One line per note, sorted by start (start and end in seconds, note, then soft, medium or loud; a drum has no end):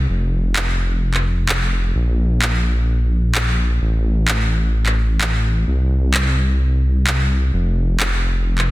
0.09 1.93 F1 medium
0.56 clap loud
1.14 clap soft
1.49 clap loud
1.95 3.79 A#1 medium
2.42 clap loud
3.35 clap loud
3.81 5.65 A1 medium
4.28 clap loud
4.86 clap soft
5.21 clap loud
5.67 7.51 C2 medium
6.14 clap loud
7.07 clap loud
7.53 8.71 F1 medium
8.00 clap loud
8.58 clap soft